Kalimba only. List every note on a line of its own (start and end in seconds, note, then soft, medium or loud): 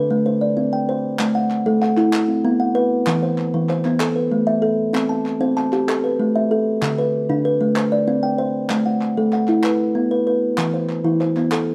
0.00 0.10 D3 medium
0.00 0.26 D4 medium
0.00 0.41 B4 medium
0.11 0.26 A3 medium
0.26 0.73 C5 medium
0.41 0.88 D5 medium
0.57 0.88 C4 medium
0.73 1.19 G5 medium
0.89 1.20 C5 medium
1.19 1.51 A3 medium
1.35 1.80 F#5 medium
1.66 1.97 A3 medium
1.66 2.13 A4 medium
1.82 2.29 F#5 medium
1.97 2.13 E4 medium
2.29 2.75 C4 medium
2.45 2.76 B3 medium
2.60 3.07 F#5 medium
2.75 3.07 B4 medium
3.07 3.38 E3 medium
3.23 3.68 C5 medium
3.54 3.85 E3 medium
3.70 4.16 C5 medium
3.85 4.01 B3 medium
4.00 4.47 A4 medium
4.16 4.63 B4 medium
4.31 4.63 A3 medium
4.47 4.94 E5 medium
4.62 4.94 A4 medium
4.93 5.25 C4 medium
5.09 5.56 A5 medium
5.41 5.72 C4 medium
5.41 5.88 C5 medium
5.57 6.04 A5 medium
5.73 5.88 G4 medium
5.88 6.35 A4 medium
6.04 6.51 B4 medium
6.20 6.51 A3 medium
6.36 6.82 E5 medium
6.51 6.82 A4 medium
6.82 7.13 D3 medium
6.98 7.44 B4 medium
7.29 7.61 D3 medium
7.29 7.76 D4 medium
7.45 7.92 B4 medium
7.61 7.76 A3 medium
7.76 8.23 C5 medium
7.92 8.39 D5 medium
8.08 8.39 C4 medium
8.23 8.70 G5 medium
8.38 8.70 C5 medium
8.70 9.02 A3 medium
8.86 9.32 F#5 medium
9.17 9.49 A3 medium
9.17 9.65 A4 medium
9.33 9.80 F#5 medium
9.49 9.64 E4 medium
9.64 10.10 B4 medium
9.95 10.27 B3 medium
10.11 10.26 B4 medium
10.27 10.59 B4 medium
10.58 10.90 E3 medium
10.74 11.19 C5 medium
11.05 11.37 E3 medium
11.05 11.52 E4 medium
11.21 11.68 C5 medium
11.37 11.53 B3 medium
11.52 11.75 A4 medium